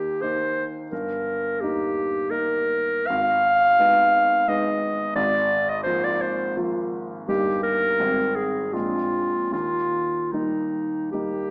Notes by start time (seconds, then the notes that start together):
Already playing: D#2 A#3 D#4 G4
0.22 A#3 D#4 C5
0.91 G1 A#4
1.61 A#3 D#4 G4
2.30 A#3 D#4 A#4
3.07 G#1 F5
3.79 G#3 B3 D#4
4.48 G#3 B3 D#4 D#5
5.16 G#1 D5
5.69 D#5
5.83 F3 A#3 F4 C5
6.04 D5
6.21 C5
6.57 F3 A#3 F4
7.28 G1 G3 A#3 D#4 G4
7.63 A#4
8.00 G#1 G3 C4 D#4
8.36 G#4
8.73 A#1 G#3 C4 D4 F4
9.52 D#2 F4
10.32 G3 A#3 D#4
11.12 G3 A#3 D#4 G4